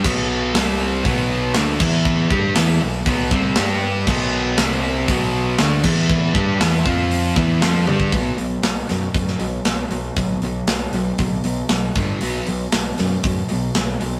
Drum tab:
CC |x-------------x-|----------------|x-------------x-|----------------|
HH |----o---o---o---|----o---o---o---|----o---o---o---|----o---o---o---|
SD |----o-------o---|----o-------o---|----o-------o---|----o-------o---|
T1 |----------------|----------------|----------------|--------------o-|
BD |o-------o-----o-|o-o-----o-o-----|o-------o-----o-|o-o---o---o----o|

CC |----------------|----------------|----------------|
HH |o-o-o-o-o-o-o-o-|o-o-o-o-o-o-o-o-|o-o-o-o-o-o-o-o-|
SD |----o-o--o--o---|----o-------o---|----o-o-----o---|
T1 |----------------|----------------|----------------|
BD |o-------o-------|o-------o-----o-|--------o-------|